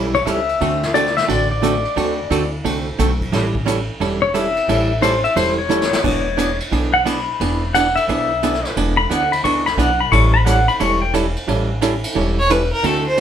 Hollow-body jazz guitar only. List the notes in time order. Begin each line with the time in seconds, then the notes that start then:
Already playing: E3 G3 C#4 E4 A4
0.26 E3 G3 C#4 E4 A4
0.61 D3 A3 C4 F#4 A4
0.94 D3 A3 C4 F#4 A4
1.28 D3 A3 C4 F#4 A4
1.62 D3 A3 C4 F#4 A4
1.96 D3 A3 C4 F#4 A4
2.30 D3 A3 C4 F#4 A4
2.65 D3 A3 C4 F#4 A4
2.98 D3 A3 C4 F#4 A4
3.32 E3 G3 C#4 E4 A4
3.66 E3 G3 C#4 E4 A4
4.00 E3 G3 C#4 E4 A4
4.34 E3 G3 C#4 E4 A4
4.69 E3 G3 C#4 E4 A4
5.01 E3 G3 C#4 E4 A4
5.36 E3 G3 C#4 E4 A4
5.69 E3 G3 C#4 E4 A4
6.04 E3 B3 D4 G#4
6.37 E3 B3 D4 G#4
6.72 E3 B3 D4 G#4
7.05 E3 B3 D4 G#4
7.41 E3 B3 D4 G#4
7.75 E3 B3 D4 G#4
8.09 E3 B3 D4 G#4
8.43 E3 B3 D4 G#4
8.77 E3 B3 D4 G#4
9.10 E3 B3 D4 G#4
9.44 E3 B3 D4 G#4
9.78 E3 B3 D4 G#4
10.12 E3 G3 C#4 E4 A4
10.46 E3 G3 C#4 E4 A4
10.80 E3 G3 C#4 E4 A4
11.14 E3 G3 C#4 E4 A4
11.48 E3 G3 C#4 E4 A4
11.81 E3 G3 C#4 E4 A4
12.15 E3 G3 C#4 E4 A4
12.50 E3 G3 C#4 E4 A4
12.83 D3 A3 C4 F#4 A4